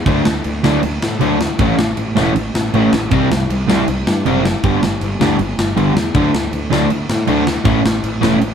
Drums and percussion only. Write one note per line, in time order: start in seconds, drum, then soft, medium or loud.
0.06 kick loud
0.06 crash medium
0.25 snare loud
0.44 crash medium
0.64 snare loud
0.83 crash medium
1.02 snare loud
1.21 crash medium
1.41 snare loud
1.59 kick loud
1.59 crash medium
1.79 snare loud
1.97 crash medium
2.17 snare loud
2.36 crash medium
2.55 snare loud
2.74 crash medium
2.93 snare loud
3.11 kick loud
3.11 crash medium
3.32 snare loud
3.50 crash medium
3.70 snare loud
3.88 crash medium
4.07 snare loud
4.26 crash medium
4.45 snare loud
4.64 kick loud
4.64 crash medium
4.83 snare loud
5.01 crash medium
5.21 snare loud
5.39 crash medium
5.59 snare loud
5.77 crash medium
5.97 snare loud
6.15 kick loud
6.15 crash medium
6.35 snare loud
6.53 crash medium
6.73 snare loud
6.90 crash medium
7.10 snare loud
7.27 crash medium
7.47 snare loud
7.65 kick loud
7.65 crash medium
7.86 snare loud
8.04 crash medium
8.23 snare loud
8.41 crash medium